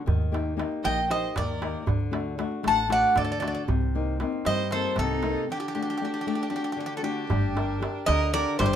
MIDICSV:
0, 0, Header, 1, 6, 480
1, 0, Start_track
1, 0, Key_signature, -2, "minor"
1, 0, Tempo, 516351
1, 68, Time_signature, 7, 3, 24, 8
1, 8141, End_track
2, 0, Start_track
2, 0, Title_t, "Violin"
2, 0, Program_c, 0, 40
2, 778, Note_on_c, 0, 75, 82
2, 1005, Note_off_c, 0, 75, 0
2, 1022, Note_on_c, 0, 72, 68
2, 1247, Note_off_c, 0, 72, 0
2, 1258, Note_on_c, 0, 70, 64
2, 1708, Note_off_c, 0, 70, 0
2, 2483, Note_on_c, 0, 78, 87
2, 2698, Note_off_c, 0, 78, 0
2, 2714, Note_on_c, 0, 74, 69
2, 2934, Note_off_c, 0, 74, 0
2, 2956, Note_on_c, 0, 69, 64
2, 3398, Note_off_c, 0, 69, 0
2, 4152, Note_on_c, 0, 72, 90
2, 4372, Note_off_c, 0, 72, 0
2, 4393, Note_on_c, 0, 69, 73
2, 4613, Note_off_c, 0, 69, 0
2, 4646, Note_on_c, 0, 63, 82
2, 5083, Note_off_c, 0, 63, 0
2, 5130, Note_on_c, 0, 62, 78
2, 6456, Note_off_c, 0, 62, 0
2, 6488, Note_on_c, 0, 66, 46
2, 6536, Note_off_c, 0, 66, 0
2, 6542, Note_on_c, 0, 62, 70
2, 7467, Note_off_c, 0, 62, 0
2, 7499, Note_on_c, 0, 70, 91
2, 7726, Note_off_c, 0, 70, 0
2, 7740, Note_on_c, 0, 70, 76
2, 7966, Note_off_c, 0, 70, 0
2, 7988, Note_on_c, 0, 67, 83
2, 8141, Note_off_c, 0, 67, 0
2, 8141, End_track
3, 0, Start_track
3, 0, Title_t, "Bouzouki"
3, 0, Program_c, 1, 25
3, 790, Note_on_c, 1, 79, 100
3, 1011, Note_off_c, 1, 79, 0
3, 1033, Note_on_c, 1, 75, 84
3, 1253, Note_off_c, 1, 75, 0
3, 1277, Note_on_c, 1, 74, 74
3, 1718, Note_off_c, 1, 74, 0
3, 2488, Note_on_c, 1, 81, 91
3, 2701, Note_off_c, 1, 81, 0
3, 2718, Note_on_c, 1, 78, 89
3, 2935, Note_off_c, 1, 78, 0
3, 2950, Note_on_c, 1, 74, 71
3, 3005, Note_off_c, 1, 74, 0
3, 3016, Note_on_c, 1, 74, 54
3, 3073, Note_off_c, 1, 74, 0
3, 3084, Note_on_c, 1, 74, 59
3, 3150, Note_off_c, 1, 74, 0
3, 3160, Note_on_c, 1, 74, 56
3, 3219, Note_off_c, 1, 74, 0
3, 3230, Note_on_c, 1, 74, 61
3, 3284, Note_off_c, 1, 74, 0
3, 3296, Note_on_c, 1, 74, 51
3, 3361, Note_off_c, 1, 74, 0
3, 4149, Note_on_c, 1, 75, 100
3, 4390, Note_on_c, 1, 72, 90
3, 4395, Note_off_c, 1, 75, 0
3, 4611, Note_off_c, 1, 72, 0
3, 4639, Note_on_c, 1, 69, 88
3, 5080, Note_off_c, 1, 69, 0
3, 5129, Note_on_c, 1, 67, 78
3, 5184, Note_off_c, 1, 67, 0
3, 5205, Note_on_c, 1, 67, 54
3, 5257, Note_off_c, 1, 67, 0
3, 5282, Note_on_c, 1, 67, 57
3, 5331, Note_off_c, 1, 67, 0
3, 5343, Note_on_c, 1, 67, 48
3, 5396, Note_off_c, 1, 67, 0
3, 5414, Note_on_c, 1, 67, 57
3, 5467, Note_off_c, 1, 67, 0
3, 5484, Note_on_c, 1, 67, 51
3, 5537, Note_off_c, 1, 67, 0
3, 5554, Note_on_c, 1, 67, 52
3, 5607, Note_off_c, 1, 67, 0
3, 5622, Note_on_c, 1, 67, 48
3, 5676, Note_off_c, 1, 67, 0
3, 5705, Note_on_c, 1, 67, 52
3, 5753, Note_off_c, 1, 67, 0
3, 5774, Note_on_c, 1, 67, 49
3, 5822, Note_off_c, 1, 67, 0
3, 5834, Note_on_c, 1, 67, 52
3, 5887, Note_off_c, 1, 67, 0
3, 5906, Note_on_c, 1, 67, 47
3, 5958, Note_off_c, 1, 67, 0
3, 5975, Note_on_c, 1, 67, 54
3, 6028, Note_off_c, 1, 67, 0
3, 6041, Note_on_c, 1, 67, 48
3, 6086, Note_off_c, 1, 67, 0
3, 6097, Note_on_c, 1, 67, 58
3, 6159, Note_off_c, 1, 67, 0
3, 6174, Note_on_c, 1, 67, 54
3, 6233, Note_off_c, 1, 67, 0
3, 6249, Note_on_c, 1, 67, 55
3, 6305, Note_off_c, 1, 67, 0
3, 6324, Note_on_c, 1, 67, 46
3, 6367, Note_off_c, 1, 67, 0
3, 6378, Note_on_c, 1, 67, 61
3, 6439, Note_off_c, 1, 67, 0
3, 6479, Note_on_c, 1, 69, 63
3, 6540, Note_off_c, 1, 69, 0
3, 6544, Note_on_c, 1, 67, 78
3, 7468, Note_off_c, 1, 67, 0
3, 7496, Note_on_c, 1, 75, 101
3, 7746, Note_off_c, 1, 75, 0
3, 7749, Note_on_c, 1, 74, 105
3, 7971, Note_off_c, 1, 74, 0
3, 7985, Note_on_c, 1, 72, 93
3, 8036, Note_off_c, 1, 72, 0
3, 8048, Note_on_c, 1, 72, 74
3, 8107, Note_off_c, 1, 72, 0
3, 8141, End_track
4, 0, Start_track
4, 0, Title_t, "Nylon-string guitar"
4, 0, Program_c, 2, 24
4, 57, Note_on_c, 2, 51, 58
4, 295, Note_on_c, 2, 58, 46
4, 299, Note_on_c, 2, 63, 42
4, 301, Note_on_c, 2, 67, 50
4, 517, Note_off_c, 2, 58, 0
4, 518, Note_off_c, 2, 63, 0
4, 524, Note_off_c, 2, 67, 0
4, 527, Note_off_c, 2, 51, 0
4, 527, Note_on_c, 2, 58, 45
4, 532, Note_on_c, 2, 63, 42
4, 535, Note_on_c, 2, 67, 49
4, 775, Note_off_c, 2, 58, 0
4, 787, Note_on_c, 2, 58, 65
4, 920, Note_off_c, 2, 63, 0
4, 924, Note_off_c, 2, 67, 0
4, 1009, Note_off_c, 2, 58, 0
4, 1020, Note_on_c, 2, 58, 43
4, 1025, Note_on_c, 2, 63, 41
4, 1028, Note_on_c, 2, 67, 51
4, 1264, Note_on_c, 2, 51, 65
4, 1406, Note_off_c, 2, 58, 0
4, 1410, Note_off_c, 2, 63, 0
4, 1410, Note_off_c, 2, 67, 0
4, 1501, Note_on_c, 2, 58, 46
4, 1508, Note_on_c, 2, 63, 44
4, 1513, Note_on_c, 2, 67, 52
4, 1695, Note_off_c, 2, 58, 0
4, 1700, Note_off_c, 2, 63, 0
4, 1701, Note_off_c, 2, 67, 0
4, 1728, Note_off_c, 2, 51, 0
4, 1732, Note_on_c, 2, 50, 58
4, 1963, Note_on_c, 2, 57, 47
4, 1968, Note_on_c, 2, 62, 45
4, 1975, Note_on_c, 2, 66, 50
4, 2201, Note_off_c, 2, 57, 0
4, 2201, Note_off_c, 2, 62, 0
4, 2204, Note_off_c, 2, 50, 0
4, 2208, Note_off_c, 2, 66, 0
4, 2211, Note_on_c, 2, 57, 45
4, 2214, Note_on_c, 2, 62, 43
4, 2219, Note_on_c, 2, 66, 54
4, 2436, Note_off_c, 2, 57, 0
4, 2447, Note_on_c, 2, 57, 69
4, 2602, Note_off_c, 2, 62, 0
4, 2606, Note_off_c, 2, 66, 0
4, 2673, Note_off_c, 2, 57, 0
4, 2684, Note_on_c, 2, 57, 49
4, 2691, Note_on_c, 2, 62, 41
4, 2697, Note_on_c, 2, 66, 52
4, 2932, Note_on_c, 2, 50, 67
4, 3077, Note_off_c, 2, 57, 0
4, 3081, Note_off_c, 2, 62, 0
4, 3084, Note_off_c, 2, 66, 0
4, 3168, Note_on_c, 2, 57, 48
4, 3170, Note_on_c, 2, 62, 43
4, 3176, Note_on_c, 2, 66, 52
4, 3367, Note_off_c, 2, 57, 0
4, 3368, Note_off_c, 2, 62, 0
4, 3372, Note_off_c, 2, 66, 0
4, 3404, Note_off_c, 2, 50, 0
4, 3418, Note_on_c, 2, 48, 64
4, 3671, Note_on_c, 2, 58, 44
4, 3674, Note_on_c, 2, 60, 45
4, 3677, Note_on_c, 2, 63, 52
4, 3888, Note_off_c, 2, 48, 0
4, 3896, Note_off_c, 2, 58, 0
4, 3904, Note_off_c, 2, 63, 0
4, 3905, Note_off_c, 2, 60, 0
4, 3907, Note_on_c, 2, 58, 45
4, 3915, Note_on_c, 2, 60, 44
4, 3919, Note_on_c, 2, 63, 51
4, 4150, Note_on_c, 2, 55, 66
4, 4291, Note_off_c, 2, 58, 0
4, 4296, Note_off_c, 2, 60, 0
4, 4296, Note_off_c, 2, 63, 0
4, 4386, Note_on_c, 2, 58, 49
4, 4392, Note_on_c, 2, 60, 44
4, 4393, Note_on_c, 2, 63, 52
4, 4614, Note_off_c, 2, 55, 0
4, 4622, Note_on_c, 2, 48, 65
4, 4770, Note_off_c, 2, 58, 0
4, 4772, Note_off_c, 2, 60, 0
4, 4774, Note_off_c, 2, 63, 0
4, 4863, Note_on_c, 2, 58, 49
4, 4867, Note_on_c, 2, 60, 44
4, 4871, Note_on_c, 2, 63, 57
4, 5056, Note_off_c, 2, 58, 0
4, 5059, Note_off_c, 2, 60, 0
4, 5061, Note_off_c, 2, 63, 0
4, 5090, Note_off_c, 2, 48, 0
4, 5113, Note_on_c, 2, 50, 63
4, 5347, Note_on_c, 2, 57, 46
4, 5351, Note_on_c, 2, 62, 43
4, 5355, Note_on_c, 2, 66, 55
4, 5575, Note_off_c, 2, 50, 0
4, 5581, Note_off_c, 2, 57, 0
4, 5583, Note_off_c, 2, 66, 0
4, 5584, Note_off_c, 2, 62, 0
4, 5592, Note_on_c, 2, 57, 45
4, 5596, Note_on_c, 2, 62, 41
4, 5596, Note_on_c, 2, 66, 53
4, 5815, Note_off_c, 2, 57, 0
4, 5826, Note_on_c, 2, 57, 69
4, 5975, Note_off_c, 2, 66, 0
4, 5976, Note_off_c, 2, 62, 0
4, 6039, Note_off_c, 2, 57, 0
4, 6050, Note_on_c, 2, 57, 45
4, 6056, Note_on_c, 2, 62, 40
4, 6060, Note_on_c, 2, 66, 50
4, 6289, Note_on_c, 2, 50, 65
4, 6441, Note_off_c, 2, 57, 0
4, 6444, Note_off_c, 2, 62, 0
4, 6446, Note_off_c, 2, 66, 0
4, 6529, Note_on_c, 2, 57, 46
4, 6534, Note_on_c, 2, 62, 44
4, 6541, Note_on_c, 2, 66, 53
4, 6728, Note_off_c, 2, 57, 0
4, 6732, Note_off_c, 2, 62, 0
4, 6734, Note_off_c, 2, 66, 0
4, 6763, Note_off_c, 2, 50, 0
4, 6788, Note_on_c, 2, 55, 69
4, 7018, Note_on_c, 2, 62, 52
4, 7025, Note_on_c, 2, 67, 45
4, 7031, Note_on_c, 2, 70, 55
4, 7246, Note_off_c, 2, 62, 0
4, 7252, Note_off_c, 2, 67, 0
4, 7253, Note_off_c, 2, 55, 0
4, 7257, Note_off_c, 2, 70, 0
4, 7257, Note_on_c, 2, 62, 48
4, 7263, Note_on_c, 2, 67, 45
4, 7268, Note_on_c, 2, 70, 52
4, 7505, Note_on_c, 2, 50, 76
4, 7645, Note_off_c, 2, 62, 0
4, 7648, Note_off_c, 2, 67, 0
4, 7651, Note_off_c, 2, 70, 0
4, 7748, Note_on_c, 2, 62, 50
4, 7755, Note_on_c, 2, 67, 44
4, 7760, Note_on_c, 2, 70, 55
4, 7971, Note_off_c, 2, 50, 0
4, 8000, Note_on_c, 2, 55, 70
4, 8131, Note_off_c, 2, 62, 0
4, 8136, Note_off_c, 2, 67, 0
4, 8138, Note_off_c, 2, 70, 0
4, 8141, Note_off_c, 2, 55, 0
4, 8141, End_track
5, 0, Start_track
5, 0, Title_t, "Upright bass"
5, 0, Program_c, 3, 32
5, 71, Note_on_c, 3, 39, 87
5, 574, Note_off_c, 3, 39, 0
5, 794, Note_on_c, 3, 34, 77
5, 1127, Note_off_c, 3, 34, 0
5, 1278, Note_on_c, 3, 39, 94
5, 1610, Note_off_c, 3, 39, 0
5, 1753, Note_on_c, 3, 38, 86
5, 2254, Note_off_c, 3, 38, 0
5, 2471, Note_on_c, 3, 33, 80
5, 2805, Note_off_c, 3, 33, 0
5, 2947, Note_on_c, 3, 38, 90
5, 3283, Note_off_c, 3, 38, 0
5, 3426, Note_on_c, 3, 36, 92
5, 3930, Note_off_c, 3, 36, 0
5, 4149, Note_on_c, 3, 43, 85
5, 4484, Note_off_c, 3, 43, 0
5, 4627, Note_on_c, 3, 36, 95
5, 4963, Note_off_c, 3, 36, 0
5, 6796, Note_on_c, 3, 31, 90
5, 7296, Note_off_c, 3, 31, 0
5, 7516, Note_on_c, 3, 38, 84
5, 7848, Note_off_c, 3, 38, 0
5, 7991, Note_on_c, 3, 31, 92
5, 8141, Note_off_c, 3, 31, 0
5, 8141, End_track
6, 0, Start_track
6, 0, Title_t, "Darbuka"
6, 69, Note_on_c, 9, 64, 76
6, 162, Note_off_c, 9, 64, 0
6, 202, Note_on_c, 9, 63, 25
6, 295, Note_off_c, 9, 63, 0
6, 320, Note_on_c, 9, 63, 64
6, 413, Note_off_c, 9, 63, 0
6, 553, Note_on_c, 9, 63, 65
6, 646, Note_off_c, 9, 63, 0
6, 668, Note_on_c, 9, 63, 23
6, 761, Note_off_c, 9, 63, 0
6, 785, Note_on_c, 9, 63, 69
6, 878, Note_off_c, 9, 63, 0
6, 1028, Note_on_c, 9, 63, 64
6, 1121, Note_off_c, 9, 63, 0
6, 1145, Note_on_c, 9, 63, 25
6, 1238, Note_off_c, 9, 63, 0
6, 1263, Note_on_c, 9, 63, 75
6, 1263, Note_on_c, 9, 64, 67
6, 1356, Note_off_c, 9, 63, 0
6, 1356, Note_off_c, 9, 64, 0
6, 1507, Note_on_c, 9, 63, 73
6, 1599, Note_off_c, 9, 63, 0
6, 1740, Note_on_c, 9, 64, 91
6, 1833, Note_off_c, 9, 64, 0
6, 1861, Note_on_c, 9, 63, 26
6, 1954, Note_off_c, 9, 63, 0
6, 1980, Note_on_c, 9, 63, 70
6, 2073, Note_off_c, 9, 63, 0
6, 2221, Note_on_c, 9, 63, 72
6, 2313, Note_off_c, 9, 63, 0
6, 2340, Note_on_c, 9, 63, 24
6, 2433, Note_off_c, 9, 63, 0
6, 2456, Note_on_c, 9, 63, 67
6, 2549, Note_off_c, 9, 63, 0
6, 2697, Note_on_c, 9, 63, 65
6, 2790, Note_off_c, 9, 63, 0
6, 2817, Note_on_c, 9, 63, 25
6, 2910, Note_off_c, 9, 63, 0
6, 2935, Note_on_c, 9, 63, 69
6, 2935, Note_on_c, 9, 64, 60
6, 3028, Note_off_c, 9, 63, 0
6, 3028, Note_off_c, 9, 64, 0
6, 3182, Note_on_c, 9, 63, 67
6, 3275, Note_off_c, 9, 63, 0
6, 3424, Note_on_c, 9, 64, 81
6, 3517, Note_off_c, 9, 64, 0
6, 3545, Note_on_c, 9, 63, 24
6, 3638, Note_off_c, 9, 63, 0
6, 3904, Note_on_c, 9, 63, 63
6, 3997, Note_off_c, 9, 63, 0
6, 4021, Note_on_c, 9, 63, 24
6, 4114, Note_off_c, 9, 63, 0
6, 4138, Note_on_c, 9, 63, 64
6, 4231, Note_off_c, 9, 63, 0
6, 4377, Note_on_c, 9, 63, 58
6, 4470, Note_off_c, 9, 63, 0
6, 4501, Note_on_c, 9, 63, 23
6, 4594, Note_off_c, 9, 63, 0
6, 4611, Note_on_c, 9, 63, 67
6, 4611, Note_on_c, 9, 64, 57
6, 4704, Note_off_c, 9, 63, 0
6, 4704, Note_off_c, 9, 64, 0
6, 4858, Note_on_c, 9, 63, 63
6, 4951, Note_off_c, 9, 63, 0
6, 6785, Note_on_c, 9, 64, 82
6, 6878, Note_off_c, 9, 64, 0
6, 7035, Note_on_c, 9, 63, 72
6, 7128, Note_off_c, 9, 63, 0
6, 7275, Note_on_c, 9, 63, 69
6, 7368, Note_off_c, 9, 63, 0
6, 7512, Note_on_c, 9, 63, 74
6, 7605, Note_off_c, 9, 63, 0
6, 7995, Note_on_c, 9, 63, 71
6, 7995, Note_on_c, 9, 64, 64
6, 8088, Note_off_c, 9, 63, 0
6, 8088, Note_off_c, 9, 64, 0
6, 8141, End_track
0, 0, End_of_file